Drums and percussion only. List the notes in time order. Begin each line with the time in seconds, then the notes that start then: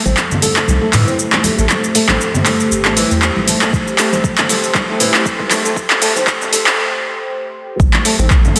0.06 muted conga, high conga, shaker
0.17 clap, shaker
0.31 low conga, shaker
0.42 open hi-hat, muted conga, shaker
0.56 clap, shaker
0.68 high conga, shaker
0.82 muted conga
0.93 clap, open hi-hat, high conga, low conga, shaker
1.08 shaker
1.19 shaker
1.32 clap, muted conga
1.44 open hi-hat, high conga, shaker
1.59 shaker
1.69 clap, muted conga, shaker
1.84 shaker
1.95 open hi-hat, shaker
2.08 clap, muted conga, high conga, shaker
2.21 shaker
2.34 low conga, shaker
2.46 clap, open hi-hat, muted conga, shaker
2.60 shaker
2.72 shaker
2.85 clap, muted conga
2.97 open hi-hat, high conga, shaker
3.11 shaker
3.22 clap, shaker
3.36 muted conga
3.48 open hi-hat, high conga, shaker
3.62 clap, shaker
3.73 kick, muted conga, shaker
3.87 shaker
3.98 clap, open hi-hat, shaker
4.12 muted conga, high conga, shaker
4.24 kick, shaker
4.38 clap, low conga, shaker
4.49 open hi-hat, muted conga, shaker
4.64 shaker
4.75 kick, clap, high conga, shaker
4.89 muted conga
5.00 open hi-hat, high conga, low conga, shaker
5.14 clap, shaker
5.26 kick, shaker
5.39 kick, muted conga
5.51 clap, open hi-hat, high conga, shaker
5.65 shaker
5.76 kick, muted conga, shaker
5.90 clap, shaker
6.02 open hi-hat, shaker
6.16 muted conga, high conga, shaker
6.27 kick, clap, shaker
6.41 low conga, shaker
6.53 open hi-hat, muted conga, shaker
6.67 clap, shaker
7.80 kick, muted conga, shaker
7.93 clap, high conga
8.05 open hi-hat, shaker
8.19 muted conga, high conga, shaker
8.30 kick, clap, shaker
8.45 low conga, shaker
8.56 open hi-hat, muted conga, shaker